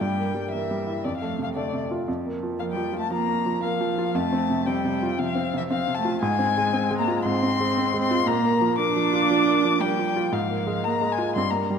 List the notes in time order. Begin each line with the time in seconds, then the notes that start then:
0.00 G2 G3 G5
0.18 A#3
0.35 G3
0.51 E3 A#3 E5
0.71 G3
0.87 E4
1.04 F2 D3 D5
1.17 F3 F5
1.22 A3
1.38 C3
1.43 F3 F5
1.55 D3 A3 D5
1.73 C3
1.91 F4
2.08 F2
2.26 A#3
2.43 F3
2.59 F3 A#3 F5
2.72 G3 G5
2.76 F3
2.93 F4
2.98 A3 A5
3.11 F3 A#3 A#5
3.28 A#3
3.46 F3
3.63 F3 A#3 F5
3.81 F3
3.98 F4
4.15 F2 A3 A5
4.33 C4
4.50 C3
4.66 G3 C4 G5
4.85 C3
5.03 F4
5.18 C3 F3 F5
5.35 C4
5.54 C3
5.58 E3 E5
5.70 F3 C4 F5
5.88 C3
5.94 A3 A5
6.05 F4
6.21 G#2 G#3 G#5
6.39 C4
6.57 G#3
6.73 C4
6.91 G#3
6.98 A#3 A#5
7.08 F4
7.23 G#2 C4 C6
7.43 C4
7.60 G#3
7.78 C4
7.94 G#3
8.01 C4 C6
8.11 F4
8.27 A#2 A#3 A#5
8.44 A#3
8.61 F3
8.77 A#3 D4 D6
8.96 F3
9.13 F4
9.31 F3
9.47 A#3
9.65 F3
9.80 G3 A#3 G5
9.99 F3
10.16 F4
10.32 G#2 F3 F5
10.50 A#3
10.67 G#3
10.84 A#3 A#5
11.02 G#3
11.11 G#3 G#5
11.18 F4
11.36 G2 C4 C6
11.50 A#3 A#5
11.70 G3